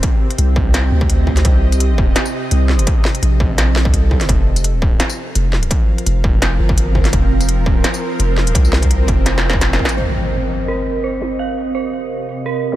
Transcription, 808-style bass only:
X:1
M:4/4
L:1/8
Q:"Swing 16ths" 1/4=169
K:Cdor
V:1 name="808-style bass" clef=bass
z2 C,,3 D,,3 | C,,4 z2 C,,2 | z2 B,,,4 C,,2 | F,,,4 z2 F,,,2 |
z2 F,,,3 G,,,3 | F,,,4 z2 F,,,2 | C,,3 F,,,4 z | z8 |
z8 |]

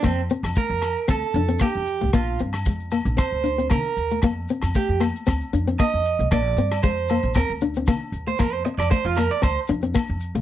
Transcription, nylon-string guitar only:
X:1
M:4/4
L:1/16
Q:"Swing 16ths" 1/4=115
K:Fmix
V:1 name="Nylon-string guitar"
B,2 C2 A,2 z2 C2 D C B,2 z A, | B,2 C2 _A,2 B,2 C2 D C B,2 z =A, | B,2 C2 A,2 B,2 C2 D C B,2 z A, | B,2 C2 _A,2 B,2 C2 D C B,2 z =A, |
B,2 C2 A,2 B,2 z2 D C B,2 z A, |]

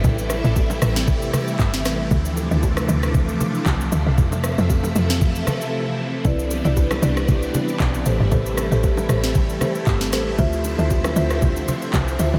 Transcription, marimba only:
X:1
M:4/4
L:1/16
Q:"Swing 16ths" 1/4=116
K:Am
V:1 name="Marimba"
z16 | z16 | z16 | [EBd] z2 [EBd] z2 [EBd] z6 z [GAc]2 |
[GAc]3 [GAc] z2 [GAc] z3 [GAc] z3 [GAc]2 | [Fce] z2 [Fce] z2 [Fce] z6 z [Fce]2 |]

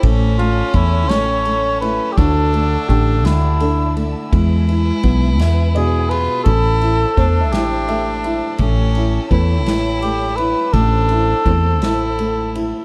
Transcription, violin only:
X:1
M:6/8
L:1/8
Q:3/8=56
K:Ddor
V:1 name="Violin"
^C6 | D4- D z | E4- E F | E2 D4 |
^C2 E4 | D2 C E2 z |]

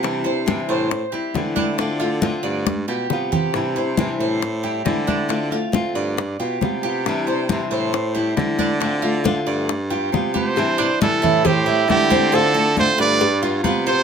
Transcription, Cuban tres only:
X:1
M:4/4
L:1/8
Q:1/4=137
K:Am
V:1 name="Cuban tres"
G c2 c2 G2 D | D F2 d2 G2 G- | G c2 c2 G2 D | D F2 d2 G2 G- |
G c2 c2 G2 D | D F2 d2 G2 G | z D2 E c E2 C | C A2 B2 F B c |]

